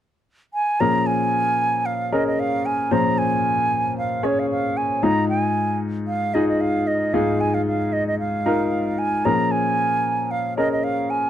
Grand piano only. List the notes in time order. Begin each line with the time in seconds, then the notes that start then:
0.80 A#2 F3 C#4 G#4 A#4
2.12 C#4 G#4 A#4
2.91 A#2 F3 C#4 G#4 C5
4.23 C#4 G#4 C#5
5.03 G#2 G#3 D#4 F4 G#4
6.35 D#4 F4 G#4
7.14 G#2 G#3 D#4 F4 G#4
8.46 D#4 F4 A#4
9.25 A#2 F3 C#4 G#4 A#4
10.57 C#4 G#4 A#4